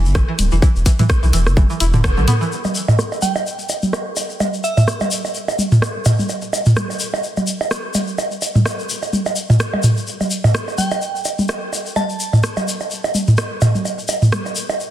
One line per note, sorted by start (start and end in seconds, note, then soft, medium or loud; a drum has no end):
0.05 0.24 G1 medium
0.05 shaker soft
0.15 0.17 E3 medium
0.15 kick loud
0.15 cross-stick medium
0.15 shaker soft
0.28 0.31 E3 medium
0.39 0.50 D1 medium
0.39 closed hi-hat medium
0.39 high tom soft
0.39 shaker medium
0.51 0.61 E1 loud
0.51 0.54 E3 medium
0.51 shaker soft
0.62 0.66 E3 loud
0.62 kick loud
0.62 shaker medium
0.76 0.84 E1 loud
0.76 shaker soft
0.86 0.88 E3 medium
0.86 kick medium
0.86 closed hi-hat medium
0.86 shaker loud
0.99 1.02 E3 medium
0.99 closed hi-hat soft
0.99 mid tom medium
0.99 high tom soft
0.99 shaker soft
1.09 kick loud
1.09 cross-stick loud
1.09 shaker soft
1.23 1.32 B1 medium
1.23 1.25 E3 medium
1.23 shaker soft
1.33 1.48 E1 medium
1.33 1.37 E3 medium
1.33 closed hi-hat medium
1.33 shaker medium
1.47 1.66 F#1 medium
1.47 cross-stick medium
1.47 shaker soft
1.57 1.59 E3 medium
1.57 kick loud
1.57 high tom soft
1.57 shaker soft
1.70 1.73 E3 medium
1.70 shaker soft
1.80 2.19 E1 medium
1.80 1.84 E4 medium
1.80 closed hi-hat medium
1.80 shaker medium
1.94 1.97 D3 medium
1.94 mid tom loud
1.94 shaker soft
2.04 2.08 D3 medium
2.04 kick loud
2.04 cross-stick loud
2.04 shaker medium
2.17 2.26 B1 medium
2.17 2.20 D3 medium
2.17 high tom soft
2.17 shaker soft
2.28 2.31 B3 loud
2.28 closed hi-hat medium
2.28 mid tom loud
2.28 shaker medium
2.41 2.44 E3 medium
2.41 shaker soft
2.52 shaker medium
2.64 high tom soft
2.64 high bongo soft
2.64 shaker soft
2.75 shaker medium
2.88 mid tom medium
2.88 high bongo medium
2.88 shaker soft
2.99 cross-stick medium
2.99 shaker soft
3.12 high bongo soft
3.12 shaker soft
3.22 3.37 G5 medium
3.22 high tom soft
3.22 shaker medium
3.36 high bongo medium
3.36 shaker soft
3.47 shaker medium
3.59 shaker soft
3.69 high bongo soft
3.69 shaker medium
3.82 high tom soft
3.82 shaker soft
3.93 cross-stick medium
3.93 high bongo medium
3.93 shaker soft
4.16 high bongo soft
4.16 shaker medium
4.30 shaker soft
4.40 high tom soft
4.40 high bongo medium
4.40 shaker soft
4.54 shaker soft
4.64 4.72 E5 medium
4.64 shaker medium
4.77 4.84 E5 medium
4.77 mid tom medium
4.77 high bongo soft
4.77 shaker soft
4.88 cross-stick medium
4.88 shaker medium
5.00 high tom soft
5.00 high bongo medium
5.00 shaker soft
5.11 shaker loud
5.25 high bongo soft
5.25 shaker soft
5.34 shaker medium
5.48 high bongo medium
5.48 shaker soft
5.59 high tom soft
5.59 shaker medium
5.72 mid tom medium
5.72 shaker soft
5.82 cross-stick loud
5.82 high bongo soft
5.82 shaker soft
6.05 mid tom medium
6.05 high bongo medium
6.05 shaker medium
6.19 high tom soft
6.19 shaker soft
6.29 high bongo soft
6.29 shaker medium
6.42 shaker soft
6.53 high bongo medium
6.53 shaker medium
6.66 mid tom medium
6.66 shaker soft
6.76 cross-stick medium
6.76 high tom soft
6.76 shaker medium
6.90 high bongo soft
6.90 shaker soft
7.00 shaker medium
7.14 high bongo medium
7.14 shaker soft
7.24 shaker medium
7.37 high tom soft
7.37 high bongo soft
7.37 shaker soft
7.47 shaker loud
7.61 high bongo medium
7.61 shaker soft
7.71 cross-stick medium
7.71 shaker medium
7.94 high tom soft
7.94 high bongo soft
7.94 shaker loud
8.08 shaker soft
8.18 high bongo medium
8.18 shaker medium
8.31 shaker soft
8.42 high bongo soft
8.42 shaker medium
8.55 mid tom medium
8.55 high tom soft
8.55 shaker soft
8.66 cross-stick medium
8.66 high bongo medium
8.66 shaker medium
8.79 shaker soft
8.89 shaker medium
9.02 high bongo soft
9.02 shaker soft
9.13 high tom soft
9.13 shaker medium
9.26 high bongo medium
9.26 shaker soft
9.36 shaker medium
9.50 mid tom medium
9.50 high bongo soft
9.50 shaker soft
9.60 cross-stick medium
9.60 shaker medium
9.73 high tom soft
9.73 high bongo medium
9.83 mid tom medium
9.83 shaker medium
9.97 shaker soft
10.07 shaker soft
10.21 high tom soft
10.21 high bongo soft
10.21 shaker soft
10.30 shaker medium
10.44 mid tom medium
10.44 high bongo medium
10.44 shaker soft
10.54 cross-stick medium
10.54 shaker soft
10.68 high bongo soft
10.68 shaker soft
10.78 10.93 G5 medium
10.78 high tom soft
10.78 shaker medium
10.91 high bongo medium
10.91 shaker soft
11.02 shaker medium
11.16 shaker soft
11.25 high bongo soft
11.25 shaker medium
11.39 high tom soft
11.39 shaker soft
11.48 cross-stick medium
11.48 high bongo medium
11.48 shaker soft
11.73 high bongo soft
11.73 shaker medium
11.86 shaker soft
11.96 12.33 A5 medium
11.96 high tom soft
11.96 high bongo medium
11.96 shaker soft
12.10 shaker soft
12.20 shaker medium
12.33 mid tom medium
12.33 high bongo soft
12.33 shaker soft
12.43 cross-stick medium
12.43 shaker soft
12.57 high tom soft
12.57 high bongo medium
12.57 shaker soft
12.68 shaker medium
12.81 high bongo soft
12.81 shaker soft
12.91 shaker soft
13.04 high bongo medium
13.04 shaker soft
13.15 high tom soft
13.15 shaker medium
13.27 mid tom medium
13.27 shaker soft
13.38 cross-stick medium
13.38 high bongo soft
13.38 shaker soft
13.61 mid tom medium
13.61 high bongo medium
13.61 shaker medium
13.75 high tom soft
13.75 shaker soft
13.85 high bongo soft
13.85 shaker soft
13.99 shaker soft
14.08 high bongo medium
14.08 shaker medium
14.22 mid tom medium
14.22 shaker soft
14.32 cross-stick medium
14.32 high tom soft
14.32 shaker soft
14.46 high bongo soft
14.46 shaker soft
14.56 shaker medium
14.69 high bongo medium
14.69 shaker soft
14.80 shaker medium